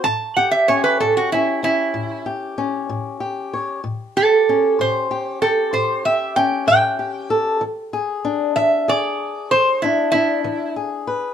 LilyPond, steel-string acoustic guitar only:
\new Staff \with { instrumentName = "Steel-string acoustic guitar" } { \time 12/8 \key a \mixolydian \tempo 4. = 63 << { r8 g'8 cis'4 cis'8 cis'4 g'8 cis'4 g'8 cis''8 | r8 g'8 cis'4 g'8 g'4 g'8 cis'4 g'8 a'8 | r8 gis'8 d'4 gis'4. d'8 d'4 gis'8 b'8 | } \\ { a,4 r8 a,4 r8 a,4 r8 a,4 r8 | a,4 r8 a,4 r8 a,4 r8 a,4 r8 | e4 r8 e4 r8 e4 r8 e4 r8 | } >> }